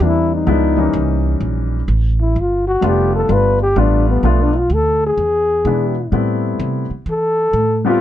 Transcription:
0.00 upright bass E2, grand piano E3 G3 A#3 C4 D4
0.06 trombone E4
0.35 trombone D#4
0.47 upright bass C#2, grand piano F3 G#3 B3 D4 E4
0.77 grand piano E3 G3 A#3 C#4 D#4
0.93 upright bass C2
1.41 upright bass A#1
1.88 upright bass A1
2.21 trombone E4
2.36 upright bass G1
2.41 trombone F4
2.67 trombone F#4
2.81 upright bass F1, grand piano G3 A3 B3 D4 F4
2.87 trombone G4
3.16 trombone A4
3.29 upright bass G1, grand piano G3 A3 B3 D4 F4
3.33 trombone B4
3.63 trombone G4
3.76 upright bass A1, grand piano G3 A3 B3 D4 F4
3.80 trombone D4
4.10 trombone B3
4.23 upright bass B1, grand piano F3 A3 B3 D4 F4
4.28 trombone A3
4.42 trombone D4
4.58 trombone F4
4.70 upright bass D2
4.74 trombone A4
5.06 trombone G#4
5.18 upright bass E2
5.65 upright bass B2, grand piano E3 G#3 B3 D4 E4
6.12 upright bass A2, grand piano G3 A3 B3 C4 E4
6.60 upright bass C3
6.91 muted upright bass stroke
7.06 upright bass E3
7.11 trombone A4
7.53 upright bass A2
7.85 grand piano G3 A3 B3 C4 G4, trombone F4

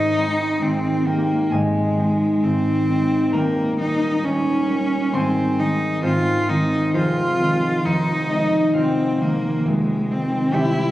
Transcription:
Already playing: harp G#1 G#2 D#4 G#4 C5 D#5 F5 C6, cello D#4
0.16 harp G#3 C4 D#4
0.61 harp G#1 G#2, cello C4
1.04 harp G#3 C4 G5, cello A#3
1.09 harp D#4 G4
1.50 harp G#1 G#2 G#4 D#5 G#5, cello G#3
1.97 harp G#3 C4 D#4
2.43 harp G#1 G#2, cello C4
2.89 harp G#3 C4 D#4
3.30 harp D#1 D#2 A#5, cello A#3
3.36 harp A#4 G5
3.79 harp G3 A#3 C#4, cello D#4
4.23 harp D#1 D#2, cello C#4
4.69 harp G3 A#3 C#4
5.12 harp G#1 G#2 C5 C6, cello C4
5.18 harp G#5
5.59 harp D#3 G#3 C4, cello D#4
6.02 harp G#1 G#2 C4 G#4 C5, cello F4
6.49 harp D#3 G#3 C4, cello D#4
6.93 harp F1 F2 C4 G#4 C5, cello F4
7.39 harp D#3 G#3 C4
7.84 harp F1 F2, cello D#4
8.28 harp D#3 G#3 C4 D#5
8.33 harp D#4
8.73 harp F1 F2 F4 C5 F5, cello C4
9.21 harp D#3 G#3 C4, cello A#3
9.65 harp F1 F2, cello G#3
10.10 harp D#3 G#3 C4, cello C4
10.52 harp C2 C3 G4 E5 G5, cello E4

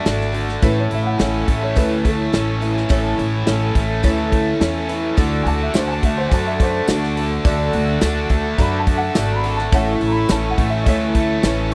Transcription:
Already playing: overdriven electric guitar D3 A3
0.05 upright bass G#1, twelve-string acoustic guitar A3 D4 F#4 A4, reed electric piano D4 F#4 A4, snare, open hi-hat
0.21 snare
0.32 overdriven electric guitar D3, twelve-string acoustic guitar D4 F#4 A4, open hi-hat
0.49 snare
0.62 upright bass A1, twelve-string acoustic guitar A2 E3 A3 C#4 E4 A4, reed electric piano C#4 E4 A4, upright piano B4, kick, open hi-hat
0.79 upright piano C#5
0.90 upright bass A1, overdriven electric guitar E4, upright piano E5, open hi-hat
1.02 upright piano F5
1.06 upright piano F#5
1.19 upright bass A1, twelve-string acoustic guitar A3 C#4 E4 A4, reed electric piano C#4 E4 A4, snare, open hi-hat
1.48 upright bass A1, overdriven electric guitar A3, kick, open hi-hat
1.63 upright piano C#5
1.75 upright bass D2, twelve-string acoustic guitar A2 E3 A3 C#4 E4 A4, reed electric piano C#4 E4 A4, upright piano B4, kick, open hi-hat
2.04 overdriven electric guitar A3, upright piano A4, kick, open hi-hat
2.33 upright bass A1, twelve-string acoustic guitar A3 C#4 E4 A4, reed electric piano C#4 E4 A4, snare, open hi-hat
2.61 overdriven electric guitar E3, twelve-string acoustic guitar A3 C#4 E4 A4, open hi-hat
2.77 snare
2.89 upright bass A1, twelve-string acoustic guitar A2 E3 A3 C#4 E4 A4, reed electric piano C#4 E4 A4, kick, open hi-hat
3.18 upright bass A1, twelve-string acoustic guitar A3 C#4 E4 A4, open hi-hat
3.46 upright bass A1, twelve-string acoustic guitar A3 C#4 E4 A4, reed electric piano C#4 E4 A4, snare, open hi-hat
3.75 upright bass A1, overdriven electric guitar A3, kick, open hi-hat
4.03 upright bass D2, twelve-string acoustic guitar A2 E3 A3 C#4 E4 A4, reed electric piano C#4 E4 A4, kick, open hi-hat
4.32 overdriven electric guitar A3, kick, open hi-hat
4.60 upright bass E2, twelve-string acoustic guitar A3 C#4 E4 A4, reed electric piano C#4 E4 A4, snare, open hi-hat
4.88 overdriven electric guitar E3, twelve-string acoustic guitar A3 C#4 E4 A4, open hi-hat
5.17 upright bass D2, twelve-string acoustic guitar D3 A3 D4 F#4 A4, accordion A3 F#5 D6, reed electric piano D4 F#4 A4, kick, open hi-hat
5.43 upright bass D2, overdriven electric guitar F#4, upright piano G#5, open hi-hat
5.48 upright piano A5
5.62 upright piano E5
5.74 upright bass D2, twelve-string acoustic guitar A3 D4 F#4 A4, reed electric piano D4 F#4, upright piano C5, snare, open hi-hat, tambourine
5.88 upright piano G#5
5.92 upright piano A5
6.03 upright bass D2, overdriven electric guitar A3, upright piano E5, kick, open hi-hat
6.18 upright piano C5
6.28 upright bass F#2, twelve-string acoustic guitar D3 A3 D4, reed electric piano D4 F#4 A4, upright piano G#5, kick, open hi-hat
6.32 twelve-string acoustic guitar F#4 A4, upright piano A5
6.46 upright piano E5
6.60 overdriven electric guitar A3, upright piano C5, kick, open hi-hat
6.88 upright bass D2, twelve-string acoustic guitar A3 D4 F#4 A4, reed electric piano D4 F#4 A4, upright piano D4 F#4, snare, open hi-hat, tambourine
7.04 snare
7.16 overdriven electric guitar D3, twelve-string acoustic guitar D4 F#4 A4, open hi-hat
7.44 upright bass D2, twelve-string acoustic guitar D3 A3 D4 F#4 A4, reed electric piano D4 F#4 A4, accordion E6, kick, open hi-hat
7.73 upright bass D2, overdriven electric guitar F#4, open hi-hat
8.01 upright bass D2, twelve-string acoustic guitar A3 D4 F#4 A4, reed electric piano D4 F#4 A4, snare, open hi-hat, tambourine
8.29 upright bass D2, overdriven electric guitar A3, kick, open hi-hat
8.58 upright bass F#2, twelve-string acoustic guitar D3 A3 D4 F#4 A4, reed electric piano D4 F#4 A4, upright piano A#5, kick, open hi-hat
8.62 upright piano B5
8.80 upright piano A5
8.87 overdriven electric guitar A3, kick, open hi-hat
8.97 upright piano F#5
9.15 upright bass G#1, twelve-string acoustic guitar A3 D4 F#4 A4, reed electric piano D4 F#4 A4, upright piano E5, snare, open hi-hat, tambourine
9.32 upright piano A#5
9.36 upright piano B5
9.44 overdriven electric guitar D3, twelve-string acoustic guitar D4 F#4 A4, open hi-hat
9.56 upright piano A5, snare
9.72 upright bass A1, twelve-string acoustic guitar A2 E3 A3 C#4 E4 A4, reed electric piano C#4 E4 A4, accordion E5 C#6, upright piano F#5, kick, open hi-hat
9.93 upright piano E5
10.00 upright bass A1, overdriven electric guitar E4, open hi-hat
10.07 upright piano A#5
10.12 upright piano B5
10.29 upright bass A1, twelve-string acoustic guitar A3 C#4 E4 A4, reed electric piano C#4 E4 A4, upright piano A5, snare, open hi-hat, tambourine
10.50 upright piano F#5
10.58 upright bass A1, overdriven electric guitar A3, kick, open hi-hat
10.69 upright piano E5
10.83 upright bass D2, twelve-string acoustic guitar A2 A3, reed electric piano C#4 E4, upright piano D#5, kick, open hi-hat
10.87 twelve-string acoustic guitar E3 C#4 E4 A4, reed electric piano A4, upright piano E5
11.15 overdriven electric guitar A3, kick, open hi-hat
11.43 upright bass A1, twelve-string acoustic guitar A3 C#4 E4 A4, reed electric piano C#4 E4 B4, snare, open hi-hat, tambourine

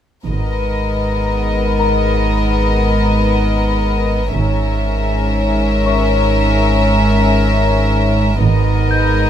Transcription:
0.27 double bass section G#1, sub bass G#1, cello section G#2, violin section B3 A#4 D#5
1.79 celesta A#4 A#5
4.33 double bass section G#1, sub bass G#1, cello section G#2, violin section C#4 A#4 E5
5.86 celesta C#5 C#6
8.40 sub bass G#1, double bass section G#1, cello section G#2, violin section B3 A#4 D#5
8.91 celesta G6

